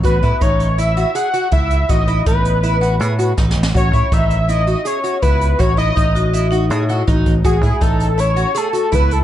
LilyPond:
<<
  \new Staff \with { instrumentName = "Analog synth lead" } { \time 5/4 \key a \lydian \tempo 4 = 162 b'4 cis''4 e''4 fis''4 e''4 | dis''4 b'2. r4 | cis''4 e''4 dis''4 cis''4 b'4 | cis''8 dis''2 r2 r8 |
gis'4 a'4 cis''4 a'4 b'8 a'8 | }
  \new Staff \with { instrumentName = "Twelve-string acoustic guitar" } { \time 5/4 \key a \lydian fis'8 e'8 dis'4 e'8 fis'8 gis'8 fis'8 e'4 | fis'8 e'8 dis'4 e'8 fis'8 gis'8 fis'8 dis'4 | fis'8 e'8 dis4 e'8 fis'8 gis'8 fis'8 e'4 | fis'8 e'8 dis'4 e'8 fis'8 gis'8 fis'8 dis'4 |
fis'8 e'8 dis'4 e'8 fis'8 gis'8 fis'8 e'4 | }
  \new Staff \with { instrumentName = "Vibraphone" } { \time 5/4 \key a \lydian r1 r4 | r1 r4 | r1 r4 | r4. fis'4 dis'4 e'8 fis'8. r16 |
r1 r4 | }
  \new Staff \with { instrumentName = "Picked electric bass" } { \clef bass \time 5/4 \key a \lydian a,,8 a,16 r16 a,,2 r4 cis,4 | a,,4 a,,2 a,4 a,,8 a,,8 | a,,8 a,16 r16 a,,2 r4 cis,4 | a,,4 a,,2 a,4 a,,8 a,,8 |
a,,8 a,16 r16 a,,2 r4 cis,4 | }
  \new DrumStaff \with { instrumentName = "Drums" } \drummode { \time 5/4 <hh bd>8 <hh bd>8 <hh bd>8 hh8 hh8 hh8 hh8 hh8 <hh bd>8 hh8 | <hh bd>8 hh8 <hh bd>8 hh8 hh8 hh8 hh8 hh8 \tuplet 3/2 { <bd sn>8 sn8 sn8 } | <hh bd>8 <hh bd>8 <hh bd>8 hh8 hh8 hh8 hh8 hh8 <hh bd>8 hh8 | <hh bd>8 hh8 <hh bd>8 hh8 hh8 hh8 hh8 hh8 <hh bd>8 <hh bd>8 |
<hh bd>8 <hh bd>8 <hh bd>8 hh8 hh8 hh8 hh8 hh8 <hh bd>8 hh8 | }
>>